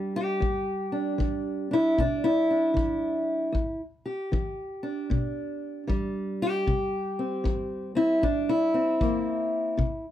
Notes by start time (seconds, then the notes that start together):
Already playing: E3 G3 D4 G4
0.16 G4
0.40 E2, kick
0.92 D4
1.18 E3, kick
1.71 D4 E4
1.98 B2 D4, kick
2.24 E4
2.50 D4
2.74 E3, kick
3.52 E2, kick
4.06 G4
4.32 E3, kick
4.83 D4
5.10 B2, kick
5.87 E3 G3, kick
6.42 G4
6.67 C3, kick
7.19 C4
7.44 E3, kick
7.95 C4 E4
8.22 G2 D4, kick
8.49 E4
8.74 C4
9.00 E3 A#3, kick
9.77 C3, kick